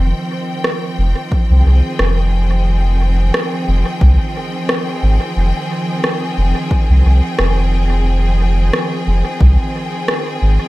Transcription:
Already playing: F1 D#3 F3 C4 G5
0.64 cross-stick
0.98 F1
1.32 kick
1.50 C2
1.57 G#4
1.65 C2
1.99 F1, cross-stick
3.34 cross-stick
3.68 F1
4.01 C2, kick
4.69 cross-stick
5.03 G#1
5.36 F1
6.04 cross-stick
6.37 F1
6.71 kick
6.90 C2
7.05 C2
7.39 F1, cross-stick
8.73 cross-stick
9.07 F1
9.41 C2, kick
10.08 cross-stick
10.42 G#1

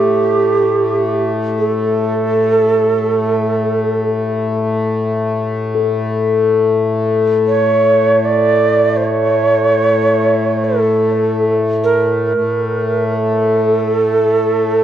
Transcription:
Already playing: A2 A3 G4
1.58 A4
5.75 A4
7.48 C#5
8.25 D5
8.97 C#5
10.64 A4
11.84 A#4
12.34 A2 A3
13.15 A4

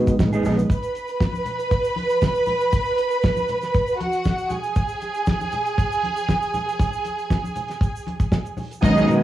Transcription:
Already playing: B2 D#3 G#3 B3 C#4 B4 D#5
0.07 muted clean electric guitar stroke, kick, closed hi-hat, shaker
0.19 A1, muted clean electric guitar stroke, kick, snare, muted conga, shaker
0.33 B3 D#4 G#4, closed hi-hat, shaker
0.43 A#1 B3 D#4 G#4, open hi-hat, muted conga, high conga, low conga, shaker
0.58 muted clean electric guitar stroke, closed hi-hat, shaker
0.69 B4 B5, kick, closed hi-hat, shaker
0.83 closed hi-hat, shaker
0.95 closed hi-hat, shaker
1.08 closed hi-hat, shaker
1.20 kick, snare, shaker
1.33 high conga, shaker
1.45 closed hi-hat, low conga, shaker
1.59 closed hi-hat, shaker
1.70 kick, closed hi-hat, muted conga, shaker
1.84 closed hi-hat, shaker
1.96 closed hi-hat, muted conga, high conga
2.09 closed hi-hat, shaker
2.21 kick, snare, shaker
2.35 shaker
2.46 closed hi-hat, high conga, low conga, shaker
2.60 closed hi-hat, shaker
2.72 kick, closed hi-hat, muted conga, shaker
2.85 shaker
2.98 closed hi-hat, shaker
3.11 closed hi-hat, shaker
3.23 kick, snare, shaker
3.37 high conga, shaker
3.48 closed hi-hat, low conga, shaker
3.62 snare, closed hi-hat, shaker
3.74 kick, closed hi-hat, muted conga, shaker
3.87 closed hi-hat, shaker
4.00 F#4 F#5, closed hi-hat, muted conga, high conga
4.12 closed hi-hat, shaker
4.24 kick, snare, shaker
4.38 shaker
4.49 G#4 G#5, closed hi-hat, muted conga, high conga, low conga, shaker
4.63 closed hi-hat, shaker
4.75 kick, closed hi-hat, muted conga, shaker
4.88 shaker
5.01 closed hi-hat, muted conga, shaker
5.14 closed hi-hat, shaker
5.26 kick, snare, shaker
5.40 high conga, shaker
5.51 closed hi-hat, muted conga, low conga, shaker
5.66 closed hi-hat, shaker
5.78 kick, closed hi-hat, shaker
5.92 closed hi-hat, shaker
6.03 closed hi-hat, high conga
6.17 closed hi-hat, shaker
6.29 kick, snare, muted conga, shaker
6.42 shaker
6.54 closed hi-hat, muted conga, high conga, low conga, shaker
6.68 closed hi-hat, shaker
6.79 kick, closed hi-hat, low conga, shaker
6.93 shaker
7.05 closed hi-hat, high conga, shaker
7.19 closed hi-hat, shaker
7.30 kick, snare, muted conga, shaker
7.44 high conga, shaker
7.56 closed hi-hat, low conga, shaker
7.68 snare, closed hi-hat, shaker
7.81 kick, closed hi-hat, shaker
7.96 shaker
8.07 closed hi-hat, muted conga, high conga
8.20 kick, closed hi-hat, shaker
8.32 kick, snare, muted conga, shaker
8.45 closed hi-hat, shaker
8.57 open hi-hat, high conga, low conga, shaker
8.71 closed hi-hat, shaker
8.81 B1 D#3 F#3 G#3 B3 D#4 F#4 B4 D#5 G#5 D#6, muted clean electric guitar stroke, kick, crash, muted conga, shaker
8.89 C#4
8.95 B3 D#4 G#4, closed hi-hat, shaker
9.07 B2 B3 D#4 A#4, closed hi-hat, muted conga, shaker

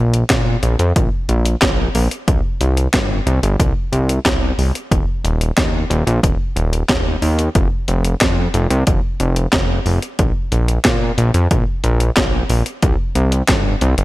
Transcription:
Already playing: A#1
0.14 closed hi-hat
0.30 A#2, kick, snare, clap, closed hi-hat
0.63 A#1, closed hi-hat
0.79 F2, closed hi-hat
0.96 A#1, kick, closed hi-hat
1.29 A#1, closed hi-hat
1.45 closed hi-hat
1.62 A#1, kick, snare, clap, closed hi-hat
1.95 A#1, open hi-hat
2.11 closed hi-hat
2.28 C2, kick, closed hi-hat
2.61 C2, closed hi-hat
2.77 closed hi-hat
2.94 G1, kick, snare, clap, closed hi-hat
3.26 C2, closed hi-hat
3.43 G1, closed hi-hat
3.60 C2, kick, closed hi-hat
3.92 C2, closed hi-hat
4.09 closed hi-hat
4.25 C2, kick, snare, clap, closed hi-hat
4.58 C2, open hi-hat
4.75 closed hi-hat
4.91 D#1, kick, closed hi-hat
5.24 D#1, closed hi-hat
5.41 closed hi-hat
5.57 D#2, kick, snare, clap, closed hi-hat
5.90 D#1, closed hi-hat
6.07 A#1, closed hi-hat
6.23 D#1, kick, closed hi-hat
6.56 D#1, closed hi-hat
6.73 closed hi-hat
6.89 D#1, kick, snare, clap, closed hi-hat
7.22 D#2, open hi-hat
7.39 closed hi-hat
7.55 F1, kick, closed hi-hat
7.88 F1, closed hi-hat
8.05 closed hi-hat
8.21 F2, kick, snare, clap, closed hi-hat
8.54 F1, closed hi-hat
8.70 C2, closed hi-hat
8.87 F1, kick, closed hi-hat
9.20 F1, closed hi-hat
9.36 closed hi-hat
9.53 F1, kick, snare, clap, closed hi-hat
9.86 F1, open hi-hat
10.02 closed hi-hat
10.19 A#1, kick, closed hi-hat
10.52 A#1, closed hi-hat
10.68 closed hi-hat
10.85 A#2, kick, snare, clap, closed hi-hat
11.18 A#1, closed hi-hat
11.34 F2, closed hi-hat
11.51 A#1, kick, closed hi-hat
11.84 A#1, closed hi-hat
12.00 closed hi-hat
12.17 A#1, kick, snare, clap, closed hi-hat
12.50 A#1, open hi-hat
12.66 closed hi-hat
12.82 C2, kick, closed hi-hat
13.15 C2, closed hi-hat
13.32 closed hi-hat
13.48 G1, kick, snare, clap, closed hi-hat
13.81 C2, closed hi-hat
13.98 G1, closed hi-hat

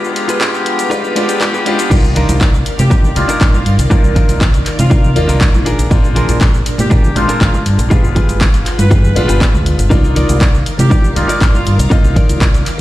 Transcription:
Already playing: G#3 B3 D4 F4 G4 G#4 B4 A#5
0.04 G1, shaker
0.16 open hi-hat
0.28 G1 F4 G#4 B4, closed hi-hat, shaker
0.40 G#3 B3 D4 F4 G4, kick, clap, closed hi-hat, shaker
0.54 shaker
0.65 muted clean electric guitar stroke, open hi-hat
0.79 G2, closed hi-hat, shaker
0.90 G#3 B3 D4 F4 G4 G#4 B4, kick, closed hi-hat, shaker
1.04 shaker
1.15 B1 G#3 B3 D4 F4 G4, open hi-hat
1.29 G1, closed hi-hat, shaker
1.40 G#3 B3 D4 F4 G4, kick, clap, closed hi-hat, shaker
1.53 D2 F4 G#4 B4, shaker
1.66 G#3 B3 D4 F4 G4, open hi-hat
1.79 G1, closed hi-hat, shaker
1.90 C2 D#3 A#3 D4 D#4 F4 A#4 D5 F5, kick, closed hi-hat, crash, high conga, shaker
2.04 shaker
2.15 D4 D#4 F4 A#4, open hi-hat, low conga, shaker
2.29 C2, closed hi-hat, high conga, shaker
2.40 kick, clap, closed hi-hat, shaker
2.54 shaker
2.66 muted fingered electric bass stroke, open hi-hat, shaker
2.78 C3 G4, muted clean electric guitar stroke, closed hi-hat, high conga, shaker
2.90 D4 D#4 F4 A#4, kick, closed hi-hat, shaker
3.03 low conga, shaker
3.15 C2 D#3 A#3 F4 D5, open hi-hat, high conga, shaker
3.28 D4 D#4 F4 A#4, muted fingered electric bass stroke, closed hi-hat, shaker
3.41 A#1, kick, clap, closed hi-hat, shaker
3.54 F4, high conga, shaker
3.66 G2, open hi-hat, shaker
3.78 C2, muted clean electric guitar stroke, closed hi-hat, shaker
3.90 D#3 A#3 D4 D#4 F4 A#4 D5, kick, closed hi-hat, high conga, shaker
4.04 C2, shaker
4.15 D4 D#4 F4 A#4, kick, open hi-hat, low conga, shaker
4.29 C2, closed hi-hat, high conga, shaker
4.41 kick, clap, closed hi-hat, shaker
4.54 open hi-hat, shaker
4.66 muted fingered electric bass stroke, clap, open hi-hat, shaker
4.78 C3 F4, muted clean electric guitar stroke, closed hi-hat, high conga, shaker
4.90 D4 D#4 F4 A#4, kick, closed hi-hat, shaker
5.04 low conga, shaker
5.16 D#2 D#3 A#3 F4 D5, open hi-hat, high conga, shaker
5.28 C2 D4 D#4 F4 A#4, closed hi-hat, shaker
5.41 kick, clap, closed hi-hat, shaker
5.54 A#1, high conga, shaker
5.65 D4 F4 G#4 A#4, open hi-hat, shaker
5.79 A#1, closed hi-hat, shaker
5.90 A#1 G#3 C4 D4 F4, kick, closed hi-hat, high conga, shaker
6.04 shaker
6.15 D4 F4 G#4 A#4, open hi-hat, low conga, shaker
6.28 A#1, closed hi-hat, high conga, shaker
6.41 kick, clap, closed hi-hat, shaker
6.54 shaker
6.66 muted fingered electric bass stroke, open hi-hat, shaker
6.78 A#2 G4, muted clean electric guitar stroke, closed hi-hat, high conga, shaker
6.90 D4 F4 G#4 A#4, kick, closed hi-hat, shaker
7.04 low conga, shaker
7.15 A#1 G#3 C4 D4 F4, open hi-hat, high conga, shaker
7.28 D4 F4 G#4 A#4, muted fingered electric bass stroke, closed hi-hat, shaker
7.41 G#1 F4, kick, clap, closed hi-hat, shaker
7.54 high conga, shaker
7.66 G2, open hi-hat, shaker
7.78 A#1, muted clean electric guitar stroke, closed hi-hat, shaker
7.90 G#3 B3 D4 F4 G4 G#4 B4, kick, closed hi-hat, high conga, shaker
8.04 G1, shaker
8.15 F4 G4 G#4 B4, kick, open hi-hat, low conga, shaker
8.29 G1, closed hi-hat, high conga, shaker
8.41 kick, clap, closed hi-hat, shaker
8.54 open hi-hat, shaker
8.66 muted fingered electric bass stroke, clap, open hi-hat, shaker
8.78 G2 B4, muted clean electric guitar stroke, closed hi-hat, high conga, shaker
8.91 F4 G4 G#4 B4, kick, closed hi-hat, shaker
9.04 low conga, shaker
9.15 B1 G#3 B3 D4 F4, open hi-hat, high conga, shaker
9.28 G1 F4 G4 G#4 B4, closed hi-hat, shaker
9.41 kick, clap, closed hi-hat, shaker
9.54 D2, high conga, shaker
9.66 open hi-hat, shaker
9.78 G1, muted clean electric guitar stroke, closed hi-hat, shaker
9.90 C2 D#3 A#3 D#4 F4 A#4 D5 F5 D6, kick, closed hi-hat, high conga, shaker
10.04 shaker
10.15 D#4 F4 A#4 D5, open hi-hat, low conga, shaker
10.29 C2, closed hi-hat, high conga, shaker
10.41 kick, clap, closed hi-hat, shaker
10.54 shaker
10.66 muted fingered electric bass stroke, open hi-hat, shaker
10.78 C3 G4, muted clean electric guitar stroke, closed hi-hat, high conga, shaker
10.90 D#4 F4 A#4 D5, kick, closed hi-hat, shaker
11.04 low conga, shaker
11.15 C2 A#3 D#4 F4 D5, open hi-hat, high conga, shaker
11.28 D#4 F4 A#4 D5, muted fingered electric bass stroke, closed hi-hat, shaker
11.41 A#1, kick, clap, closed hi-hat, shaker
11.54 F4, high conga, shaker
11.65 G2, open hi-hat, shaker
11.78 C2, muted clean electric guitar stroke, closed hi-hat, shaker
11.90 A#3 D#4 F4 A#4 D#5, kick, closed hi-hat, high conga, shaker
12.04 C2, shaker
12.15 D#4 F4 A#4 D5, kick, open hi-hat, low conga, shaker
12.29 C2, closed hi-hat, high conga, shaker
12.41 kick, clap, closed hi-hat, shaker
12.54 open hi-hat, shaker
12.66 muted fingered electric bass stroke, clap, open hi-hat, shaker

